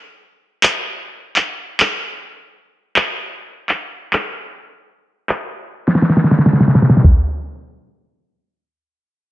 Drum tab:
CP |--------x---------x-----x-------|--------x---------x-----x-------|--------x-----------------------|--------------------------------|
SD |--------------------------------|--------------------------------|----------------oooooooooooooooo|--------------------------------|
FT |--------------------------------|--------------------------------|--------------------------------|o-------------------------------|
BD |--------------------------------|--------------------------------|--------------------------------|o-------------------------------|